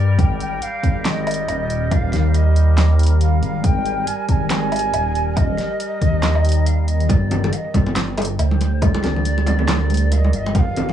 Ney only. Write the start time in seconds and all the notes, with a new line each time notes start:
Already playing: D5
0.19 G5
0.41 G5
0.62 F5
1.05 D#5 F5
1.91 F5
2.35 D#5
3.21 F5
3.43 F5
3.64 G5
4.07 G#5
4.29 G#5 A#5
4.50 G#5
5.37 D#5
6.66 F5
6.88 D#5
7.09 D5
7.53 D#5 F5
7.75 D5
8.39 C5 D5
8.82 D5
10.12 F5
10.17 D#5
10.34 D#5 F5
10.55 G5
10.59 F5